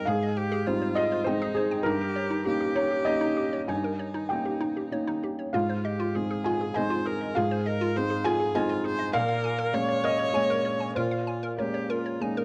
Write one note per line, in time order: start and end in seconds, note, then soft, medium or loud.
0.05 0.65 G#2 medium
0.05 0.16 G#4 loud
0.05 0.39 G#4 medium
0.05 0.92 F5 loud
0.23 0.31 D#5 medium
0.37 0.69 G4 medium
0.37 0.46 G5 medium
0.52 0.61 G#4 loud
0.66 1.22 G3 medium
0.66 1.23 C4 medium
0.66 1.23 D#4 medium
0.66 1.29 F4 medium
0.66 0.76 C5 medium
0.82 0.91 C5 medium
0.95 1.06 G#4 loud
0.95 1.24 D#5 loud
1.12 1.21 C5 medium
1.24 1.82 G#3 medium
1.24 1.82 C4 medium
1.24 1.83 D#4 medium
1.24 1.86 D#4 medium
1.24 1.53 C5 loud
1.24 1.35 G5 medium
1.42 1.51 G#4 loud
1.55 1.83 G#4 loud
1.55 1.66 C5 medium
1.71 1.80 G5 medium
1.83 2.43 G2 medium
1.83 1.95 D#4 loud
1.83 2.45 G4 loud
1.83 2.71 A#4 loud
2.01 2.10 A#4 medium
2.16 2.25 C#5 medium
2.30 2.40 D#4 loud
2.45 3.02 A#3 medium
2.45 3.02 C#4 medium
2.45 3.03 D#4 medium
2.45 2.55 G4 medium
2.45 3.66 G4 medium
2.61 2.70 G4 medium
2.75 2.85 D#4 loud
2.75 3.04 C#5 medium
2.91 3.00 G4 medium
3.05 3.65 A#3 medium
3.05 3.65 C#4 medium
3.05 3.65 D#4 medium
3.05 3.15 C#5 medium
3.05 3.64 D#5 loud
3.21 3.31 D#4 loud
3.37 3.46 G4 medium
3.53 3.62 C#5 medium
3.68 4.28 G2 medium
3.68 3.78 D#4 medium
3.68 5.20 D#4 medium
3.68 4.26 G#5 medium
3.84 3.93 A#4 medium
3.99 4.09 C#5 medium
4.14 4.24 D#4 medium
4.29 4.88 A#3 soft
4.29 4.88 C#4 soft
4.29 4.88 D#4 soft
4.29 4.39 G4 medium
4.29 5.18 G5 medium
4.45 4.55 G4 medium
4.61 4.70 D#4 loud
4.77 4.86 G4 medium
4.91 5.49 A#3 soft
4.91 5.49 C#4 soft
4.91 5.50 D#4 soft
4.91 5.01 C#5 medium
5.07 5.17 D#4 medium
5.24 5.33 G4 medium
5.39 5.48 C#5 medium
5.53 6.13 G#2 medium
5.53 5.63 F4 medium
5.53 5.86 F4 medium
5.53 6.41 F5 medium
5.69 5.79 C5 medium
5.84 6.17 G4 medium
5.84 5.94 D#5 medium
6.00 6.09 F4 loud
6.15 6.72 G#3 soft
6.15 6.72 C4 soft
6.15 6.72 D#4 soft
6.15 6.24 G#4 medium
6.15 6.78 G#4 medium
6.31 6.39 G#4 medium
6.44 6.55 F4 loud
6.44 6.73 G#5 medium
6.61 6.70 G#4 medium
6.74 7.32 G#3 medium
6.74 7.33 C4 medium
6.74 7.33 D#4 medium
6.74 7.08 C5 medium
6.74 6.85 D#5 medium
6.74 7.31 G#5 loud
6.90 6.99 F4 medium
7.06 7.15 G#4 medium
7.06 7.38 A#4 medium
7.21 7.30 D#5 medium
7.35 7.94 G#2 medium
7.35 7.45 F4 loud
7.35 7.69 G#4 medium
7.35 8.21 F5 loud
7.51 7.60 C5 medium
7.66 7.98 A#4 medium
7.66 7.75 D#5 medium
7.81 7.90 F4 loud
7.96 8.52 G#3 medium
7.96 8.52 C4 medium
7.96 8.52 D#4 medium
7.96 8.05 G#4 medium
7.96 8.27 C5 medium
8.10 8.19 G#4 medium
8.24 8.34 F4 loud
8.24 8.57 G#4 medium
8.24 8.53 G#5 loud
8.40 8.49 G#4 medium
8.55 9.10 G#3 medium
8.55 9.10 C4 medium
8.55 9.11 D#4 medium
8.55 8.87 F4 medium
8.55 8.64 D#5 medium
8.55 9.10 G#5 loud
8.69 8.78 F4 loud
8.84 8.93 G#4 medium
8.84 9.14 C5 loud
8.99 9.08 D#5 medium
9.13 9.72 A#2 medium
9.13 9.22 A#4 loud
9.13 9.76 A#4 loud
9.13 10.00 F5 loud
9.29 9.38 F5 medium
9.44 9.53 G#5 medium
9.59 9.68 A#4 loud
9.73 10.30 G#3 medium
9.73 10.30 A#3 medium
9.73 10.30 C#4 medium
9.73 9.83 C#5 medium
9.73 10.96 C#5 loud
9.89 9.98 C#5 medium
10.04 10.13 A#4 loud
10.04 10.33 D#5 loud
10.19 10.28 C#5 medium
10.33 10.91 G#3 medium
10.33 10.92 A#3 medium
10.33 10.92 C#4 medium
10.33 10.92 C#5 medium
10.33 10.43 G#5 medium
10.50 10.59 A#4 loud
10.65 10.74 C#5 medium
10.80 10.90 G#5 medium
10.95 11.57 A#2 medium
10.95 11.51 F4 medium
10.95 11.05 A#4 loud
10.95 11.54 C5 medium
11.11 11.21 F5 medium
11.27 11.37 G#5 medium
11.43 11.52 A#4 loud
11.58 12.17 G#3 soft
11.58 12.17 A#3 soft
11.58 12.17 C#4 soft
11.58 11.91 G4 medium
11.58 12.45 A#4 medium
11.58 11.68 C#5 medium
11.74 11.83 C#5 medium
11.90 12.23 F4 medium
11.90 11.99 A#4 loud
12.06 12.15 C#5 medium
12.20 12.45 G#3 soft
12.20 12.45 A#3 soft
12.20 12.45 C#4 soft
12.20 12.45 D#4 medium
12.20 12.31 G#5 medium
12.37 12.45 A#4 loud